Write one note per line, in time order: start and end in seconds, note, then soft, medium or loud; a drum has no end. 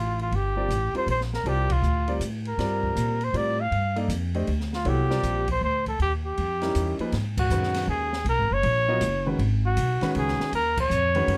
0.00 0.30 A1 medium
0.00 0.19 F4 medium
0.19 0.36 F4 medium
0.19 ride soft
0.31 0.68 G1 medium
0.31 0.96 G4 medium
0.31 ride soft
0.56 0.68 G3 medium
0.56 0.68 C4 medium
0.56 0.68 F4 medium
0.56 0.68 A#4 soft
0.56 0.68 D5 medium
0.68 0.92 A1 medium
0.68 hi-hat pedal soft
0.68 ride medium
0.94 1.06 G3 medium
0.94 1.06 C4 medium
0.94 1.06 F4 medium
0.94 1.07 A#4 medium
0.94 1.06 C5 medium
0.94 1.08 C5 medium
0.94 muted upright bass stroke soft
0.94 ride soft
1.07 1.43 A#1 medium
1.07 1.21 C5 medium
1.07 ride medium
1.21 snare soft
1.33 1.50 A#4 medium
1.33 snare soft
1.44 1.81 C2 medium
1.44 1.67 G3 medium
1.44 1.68 C4 medium
1.44 1.68 F4 medium
1.44 1.68 A#4 medium
1.44 1.68 D5 medium
1.44 ride medium
1.48 1.73 G4 medium
1.70 2.16 F4 medium
1.70 kick medium
1.70 ride medium
1.82 2.19 D2 medium
1.82 hi-hat pedal soft
2.08 2.20 G3 medium
2.08 2.20 C4 medium
2.08 2.20 F4 medium
2.08 2.20 A#4 medium
2.08 2.20 D5 medium
2.08 ride soft
2.20 2.57 A2 medium
2.20 hi-hat pedal medium
2.20 ride medium
2.45 3.25 A#4 medium
2.45 ride soft
2.58 2.95 G2 medium
2.58 3.16 G3 medium
2.58 3.16 C4 medium
2.58 3.16 F4 soft
2.58 3.16 A#4 soft
2.58 3.16 D5 medium
2.58 snare soft
2.58 ride soft
2.83 kick soft
2.96 3.33 A#2 medium
2.96 hi-hat pedal soft
2.96 ride medium
3.21 3.38 C5 medium
3.21 ride soft
3.33 3.70 A2 medium
3.33 3.56 G3 medium
3.33 3.56 C4 soft
3.33 3.56 F4 medium
3.33 3.57 A#4 medium
3.33 3.56 D5 medium
3.33 3.62 D5 medium
3.33 ride medium
3.61 3.98 F5 medium
3.71 4.08 G2 medium
3.71 ride soft
3.96 4.08 A#3 medium
3.96 4.08 D#4 medium
3.96 4.08 A4 medium
3.96 4.08 D5 medium
3.96 4.08 F5 medium
3.96 ride soft
4.08 4.46 F2 medium
4.08 hi-hat pedal soft
4.08 ride medium
4.34 4.47 A3 medium
4.34 4.47 D4 medium
4.34 4.47 G4 medium
4.34 4.47 C5 medium
4.34 4.47 D#5 medium
4.34 ride soft
4.47 4.85 D2 medium
4.47 ride soft
4.60 snare soft
4.73 4.89 F4 medium
4.73 snare soft
4.85 5.22 C2 medium
4.85 5.08 F#3 medium
4.85 5.08 B3 medium
4.85 5.08 E4 medium
4.85 5.49 G4 medium
4.85 5.08 A4 medium
4.85 5.08 C#5 medium
4.85 ride medium
5.10 5.43 G3 medium
5.10 5.43 C4 medium
5.10 5.43 F4 medium
5.10 5.43 A#4 medium
5.10 5.43 D5 medium
5.10 snare soft
5.23 5.60 A#1 medium
5.23 hi-hat pedal medium
5.23 ride medium
5.48 5.62 C5 medium
5.48 kick medium
5.48 ride medium
5.61 5.98 D2 medium
5.61 5.86 C5 medium
5.86 6.00 A4 medium
5.86 kick soft
5.86 ride soft
5.99 6.36 D#2 medium
5.99 6.12 G4 medium
5.99 ride medium
6.26 6.96 G4 medium
6.37 6.74 F2 medium
6.37 ride medium
6.61 6.97 G3 medium
6.61 6.97 C#4 medium
6.61 6.97 D#4 medium
6.61 6.97 E4 medium
6.61 6.97 A#4 medium
6.61 snare soft
6.61 ride soft
6.75 6.98 E2 medium
6.75 hi-hat pedal medium
6.75 ride medium
6.99 7.12 F3 medium
6.99 7.12 A#3 medium
6.99 7.12 D#4 medium
6.99 7.12 G#4 medium
6.99 7.12 B4 medium
6.99 muted upright bass stroke soft
6.99 ride soft
7.12 7.49 G#2 medium
7.12 snare soft
7.12 ride medium
7.37 7.86 F#4 medium
7.37 kick medium
7.37 crash medium
7.50 7.87 F#2 medium
7.50 8.08 D#3 medium
7.50 8.08 G#3 medium
7.50 8.09 C#4 soft
7.50 8.08 F#4 medium
7.50 8.09 B4 medium
7.50 hi-hat pedal medium
7.63 snare soft
7.74 snare soft
7.74 ride medium
7.87 8.24 D#2 medium
7.87 8.24 G#4 medium
8.13 snare medium
8.25 8.38 B1 medium
8.25 ride medium
8.29 8.54 A#4 loud
8.38 8.50 G#1 medium
8.51 8.63 F#1 medium
8.51 9.27 C#5 loud
8.63 9.00 A#1 medium
8.63 ride medium
8.88 9.00 F#3 medium
8.88 9.00 B3 medium
8.88 9.01 F4 medium
8.88 9.01 A#4 medium
8.88 9.01 D#5 medium
9.01 9.38 F#1 medium
9.01 hi-hat pedal medium
9.01 ride medium
9.26 9.38 D#3 medium
9.26 9.38 G#3 medium
9.26 9.38 C#4 medium
9.26 9.38 F#4 medium
9.26 9.39 B4 medium
9.39 9.76 G#1 medium
9.39 ride medium
9.66 10.13 F#4 medium
9.77 10.00 B1 medium
9.77 hi-hat pedal medium
9.77 ride medium
10.01 10.50 D#3 medium
10.01 10.50 G#3 medium
10.01 10.50 C#4 medium
10.01 10.50 F#4 medium
10.01 10.51 B4 medium
10.01 muted upright bass stroke soft
10.01 snare soft
10.01 ride soft
10.15 10.38 C#2 medium
10.15 10.52 G#4 medium
10.15 ride medium
10.28 snare soft
10.39 muted upright bass stroke soft
10.39 snare soft
10.52 10.89 D#2 medium
10.52 10.77 A#4 loud
10.52 ride medium
10.77 11.38 C#5 medium
10.77 kick medium
10.77 crash medium
10.90 11.27 F2 medium
10.90 hi-hat pedal medium
11.15 11.38 D#3 medium
11.15 11.38 G#3 medium
11.15 11.38 C#4 medium
11.15 11.38 F#4 medium
11.15 11.38 B4 medium
11.15 ride soft
11.27 11.38 F#2 medium
11.27 ride medium